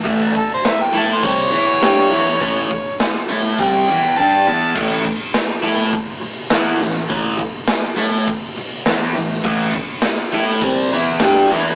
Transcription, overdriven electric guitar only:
0.04 A2 E3 A3
0.34 muted overdriven electric guitar stroke
0.93 A3 E4 A4
1.23 C3 G3 C4
1.51 E3 B3 E4
1.81 G3 D4 G4
2.11 E3 B3 E4
2.40 A2 E3 A3
2.70 muted overdriven electric guitar stroke
3.29 A3 E4 A4
3.59 C3 G3 C4
3.88 E3 B3 E4
4.18 G3 D4 G4
4.47 E3 B3 E4
4.75 A2 E3 A3
5.06 muted overdriven electric guitar stroke
5.63 A3 E4 A4
5.93 muted overdriven electric guitar stroke
6.22 muted overdriven electric guitar stroke
6.51 E3 B3 E4
6.81 A2 E3
7.09 A2 E3 A3
7.39 muted overdriven electric guitar stroke
7.96 A3 E4 A4
8.28 muted overdriven electric guitar stroke
8.58 muted overdriven electric guitar stroke
8.86 E3 B3 E4
9.15 A2 E3
9.44 A2 E3 A3
9.76 muted overdriven electric guitar stroke
10.32 A3 E4 A4
10.62 C3 G3 C4
10.93 E3 B3 E4
11.21 G3 D4 G4
11.51 E3 B3 E4

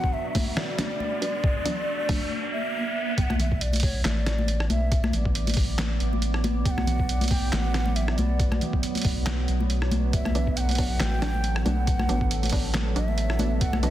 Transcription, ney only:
Already playing: F#5
0.13 E5
0.57 D5
2.53 E5
3.18 G5
3.23 F#5
3.40 E5
3.61 D5
3.83 C#5
4.05 D5
4.70 E5
6.66 G5
6.71 F#5
7.31 G5
7.52 G5
7.57 F#5
7.96 E5
8.12 E5
8.18 D5
10.13 E5
10.57 F#5 G5
11.00 G5
11.65 F#5
12.96 E5
13.61 F#5
13.82 E5

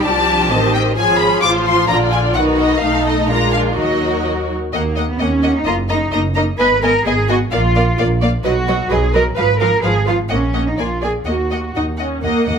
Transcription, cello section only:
Already playing: G4
0.97 G#4
1.42 F4
1.89 D4
2.35 D#4
2.82 D#4
3.29 F4
3.77 F#4
4.73 A#3
5.09 B3
5.20 C#4
5.56 D#4
5.66 F4
5.90 D#4
6.13 D#4
6.36 D#4
6.59 B4
6.83 A#4
7.06 G#4
7.29 F#4
7.52 F4
8.45 F#4
8.91 G#4
9.14 A#4
9.37 B4
9.60 A#4
9.84 G#4
10.07 F4
10.30 C#4
10.67 D#4
10.78 F4
11.02 G#4
11.26 F#4
12.23 D#2
12.47 D#2

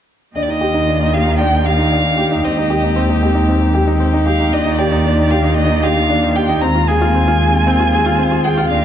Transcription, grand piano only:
0.36 D4
0.48 D#4
0.61 G4
0.74 D#4
0.87 D4
1.00 D#4
1.13 G4
1.27 D#4
1.39 D4
1.52 D#4
1.65 G4
1.78 D#4
1.91 D4
2.05 D#4
2.18 G4
2.31 D#4
2.44 C4
2.57 D#4
2.70 G4
2.83 D#4
2.96 C4
3.09 D#4
3.22 G4
3.35 D#4
3.48 C4
3.61 D#4
3.74 G4
3.87 D#4
4.00 C4
4.13 D#4
4.26 G4
4.40 D#4
4.53 D4
4.66 D#4
4.78 G4
4.91 D#4
5.05 D4
5.17 D#4
5.31 G4
5.44 D#4
5.57 D4
5.70 D#4
5.83 G4
5.97 D#4
6.10 D4
6.23 D#4
6.35 G4
6.49 D#4
6.62 C4
6.75 F4
6.88 G#4
7.01 F4
7.15 C4
7.28 F4
7.41 G#4
7.54 F4
7.67 C4
7.80 F4
7.93 G#4
8.06 F4
8.18 C4
8.31 F4
8.45 G#4
8.57 F4
8.70 D4

